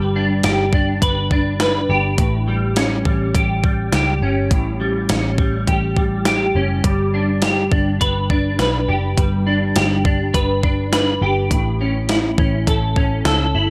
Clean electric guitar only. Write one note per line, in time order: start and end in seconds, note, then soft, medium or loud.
0.00 2.22 G3 medium
0.00 0.15 D4 medium
0.00 0.44 G4 medium
0.00 1.01 B4 soft
0.16 0.72 D4 soft
0.44 1.89 G4 medium
0.74 1.30 D4 medium
1.02 1.60 B4 medium
1.32 2.25 D4 medium
1.61 2.25 B4 medium
1.90 2.80 G4 medium
2.19 4.50 A2 medium
2.48 3.06 G3 medium
2.77 4.21 C#4 medium
3.06 3.64 G3 medium
3.35 3.93 G4 medium
3.64 4.80 G3 medium
3.94 5.68 G4 medium
4.23 5.09 C#4 medium
4.51 6.84 A2 medium
4.80 5.38 G3 medium
5.10 6.55 C#4 medium
5.39 5.97 G3 soft
5.68 6.26 G4 medium
5.97 6.84 G3 medium
6.26 7.43 G4 medium
6.56 6.91 C#4 soft
6.84 9.17 G3 medium
7.14 7.71 D4 medium
7.43 8.88 G4 medium
7.72 8.29 D4 soft
8.01 8.58 B4 medium
8.30 9.45 D4 medium
8.59 10.33 B4 medium
8.89 9.76 G4 medium
9.17 11.55 G3 medium
9.47 10.04 D4 medium
9.76 11.22 G4 medium
10.05 10.62 D4 soft
10.34 10.91 B4 medium
10.63 11.56 D4 medium
10.93 11.57 B4 medium
11.22 11.84 G4 medium
11.52 13.70 A2 medium
11.81 12.38 C#4 medium
12.10 13.54 E4 medium
12.39 12.96 C#4 soft
12.67 13.26 A4 medium
12.97 13.70 C#4 medium
13.26 13.70 A4 medium
13.55 13.70 E4 medium